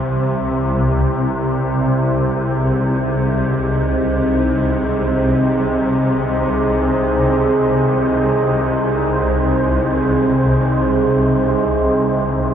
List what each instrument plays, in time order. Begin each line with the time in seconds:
Already playing: synth drone C2 C3, ambient pad C4 E4 G4 E5, synth texture C5
1.36 ambient pad G#4
1.68 ambient pad D#4
2.32 ambient pad D#5